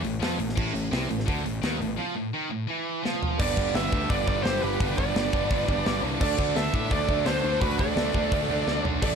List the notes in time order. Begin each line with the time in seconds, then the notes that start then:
0.03 A1 A2, open hi-hat
0.20 F2 F3, snare, open hi-hat
0.38 A1 A2, open hi-hat
0.49 snare
0.56 A1 A2, kick, crash
0.74 A1 A2, open hi-hat
0.91 C2 C3, snare, open hi-hat
1.09 A1 A2, open hi-hat
1.20 snare
1.26 D2 D3, kick, open hi-hat
1.44 A1 A2, open hi-hat
1.62 D#2 D#3, snare, open hi-hat
1.79 A1 A2, open hi-hat
1.97 F3
2.15 A2
2.33 D#3
2.50 A2
2.68 E3
3.03 F3, snare
3.23 floor tom
3.38 G1 G2 D3 G3 B4 D5, kick, crash
3.56 G1 G2 D3 G3, kick
3.74 G1 G2 D3 G3 B4 E5, snare, open hi-hat
3.91 D2 G2 D3 G3, kick
4.10 G1 G2 D3 G3 B4 D5, kick, open hi-hat
4.26 G1 G2 D3 G3 B4 D5, kick
4.43 G1 G2 D3 G3 G4 C5, snare, open hi-hat
4.61 G1 G2 D3 G3 G4 B4
4.79 G1 G2 D3 G3, kick, open hi-hat
4.97 G1 G2 D3 G3 B4 D5, kick
5.14 G1 G2 D3 G3, snare, open hi-hat
5.32 G1 G2 D3 G3, kick
5.50 G1 G2 D3 G3, kick, open hi-hat
5.67 G1 G2 D3 G3, kick
5.85 G1 G2 D3 G3, snare, open hi-hat
6.03 C2 G2 D3 G3
6.21 D2 D3 A3 D4 A4 D5, kick, crash
6.38 D2 D3 A3 D4, kick
6.55 D2 D3 A3 D4 A4 E5, snare, open hi-hat
6.73 A2 D3 A3 D4, kick
6.91 D2 D3 A3 D4 A4 D5, kick, open hi-hat
7.08 D2 D3 A3 D4, kick
7.25 D2 D3 A3 D4 A4 C5, snare, open hi-hat
7.43 D2 D3 A3 D4
7.60 D2 D3 A3 D4 F#4 B4, kick, open hi-hat
7.78 D2 D3 A3 D4 A4 D5, kick
7.96 D2 D3 A3 D4, snare, open hi-hat
8.13 D2 D3 A3 D4, kick
8.31 D2 D3 A3 D4, kick, open hi-hat
8.49 D2 D3 A3 D4
8.66 D2 D3 A3 D4, snare
8.84 B1 D3 A3 D4, floor tom
9.01 A1 A2 E3 A3 A4 D5, kick, crash